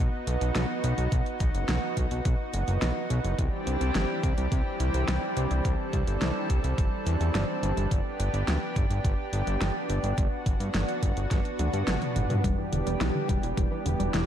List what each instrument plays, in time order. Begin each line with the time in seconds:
Already playing: analog synth pad B3 D#4 F#4
0.27 analog synth bass B1, closed hi-hat
0.41 analog synth bass B1, closed hi-hat
0.55 analog synth bass B1, snare, closed hi-hat
0.84 analog synth bass B1, closed hi-hat
0.98 analog synth bass B1, closed hi-hat
1.12 analog synth bass B1, kick, closed hi-hat
1.26 closed hi-hat
1.40 analog synth bass B1, kick, closed hi-hat
1.55 analog synth bass F#1, closed hi-hat
1.69 analog synth bass B1, snare, closed hi-hat
1.97 analog synth bass B1, kick, closed hi-hat
2.11 analog synth bass B1, closed hi-hat
2.25 analog synth bass B1, kick, closed hi-hat
2.54 analog synth bass F#1, closed hi-hat
2.68 analog synth bass F#1, closed hi-hat
2.82 analog synth bass B1, snare, closed hi-hat
3.10 analog synth bass B1, closed hi-hat
3.24 analog synth bass F#1, closed hi-hat
3.39 analog synth bass C2, analog synth pad E3 G3 C4 D4 G4, kick, closed hi-hat
3.67 analog synth bass C2, closed hi-hat
3.81 analog synth bass C2, closed hi-hat
3.95 analog synth bass G1, snare, closed hi-hat
4.23 analog synth bass C2, kick, closed hi-hat
4.38 analog synth bass C2, closed hi-hat
4.52 analog synth bass C2, kick, closed hi-hat
4.80 analog synth bass C2, closed hi-hat
4.94 analog synth bass C2, closed hi-hat
5.08 analog synth bass C2, snare, closed hi-hat
5.37 analog synth bass C2, closed hi-hat
5.51 analog synth bass C2, closed hi-hat
5.65 analog synth bass C2, analog synth pad A4, kick, closed hi-hat
5.93 analog synth bass C2, kick, closed hi-hat
6.07 analog synth bass G1, closed hi-hat
6.22 analog synth bass C2, snare, closed hi-hat
6.50 analog synth bass C2, kick, closed hi-hat
6.64 analog synth bass C2, closed hi-hat
6.78 analog synth bass G1, kick, closed hi-hat
7.06 analog synth bass E2, closed hi-hat
7.20 analog synth bass E2, closed hi-hat
7.35 analog synth bass G1, snare, closed hi-hat
7.63 analog synth bass G1, closed hi-hat
7.77 analog synth bass G1, closed hi-hat
7.91 analog synth bass G1, analog synth pad B3 G4, kick, closed hi-hat
8.19 analog synth bass G1, closed hi-hat
8.34 analog synth bass G1, closed hi-hat
8.48 analog synth bass D2, snare, closed hi-hat
8.76 analog synth bass G1, kick, closed hi-hat
8.90 analog synth bass G1, closed hi-hat
9.05 analog synth bass G1, kick, closed hi-hat
9.33 analog synth bass G1, closed hi-hat
9.47 analog synth bass G1, closed hi-hat
9.61 analog synth bass G1, snare, closed hi-hat
9.89 analog synth bass G1, closed hi-hat
10.03 analog synth bass G1, closed hi-hat
10.18 analog synth bass G1, analog synth pad F#4, kick, closed hi-hat
10.46 analog synth bass G1, kick, closed hi-hat
10.60 analog synth bass G2, closed hi-hat
10.74 analog synth bass G1, snare, closed hi-hat
10.89 closed hi-hat
11.03 analog synth bass G1, kick, closed hi-hat
11.17 analog synth bass G1, closed hi-hat
11.31 analog synth bass G1, kick, snare, closed hi-hat
11.45 closed hi-hat
11.59 analog synth bass D2, closed hi-hat, high tom
11.73 analog synth bass G2, closed hi-hat
11.88 analog synth bass G1, snare, closed hi-hat, mid tom
12.02 closed hi-hat, mid tom
12.16 analog synth bass G1, closed hi-hat, mid tom
12.30 analog synth bass G2, closed hi-hat, mid tom
12.44 analog synth bass E1, analog synth pad E3 G3 G4, synth arpeggio sound G3, kick, closed hi-hat
12.58 synth arpeggio sound E3
12.72 analog synth bass E1, synth arpeggio sound D3, closed hi-hat
12.87 analog synth bass E1, synth arpeggio sound G3, closed hi-hat
13.01 analog synth bass B1, synth arpeggio sound E3, snare, closed hi-hat
13.15 synth arpeggio sound D3
13.29 analog synth bass E1, synth arpeggio sound G3, kick, closed hi-hat
13.43 analog synth bass E1, synth arpeggio sound E3, closed hi-hat
13.57 analog synth bass E1, synth arpeggio sound G3, kick, closed hi-hat
13.71 synth arpeggio sound E3
13.86 analog synth bass E1, synth arpeggio sound D3, closed hi-hat
14.00 analog synth bass E1, synth arpeggio sound G3, closed hi-hat
14.14 analog synth bass E1, synth arpeggio sound E3, snare, closed hi-hat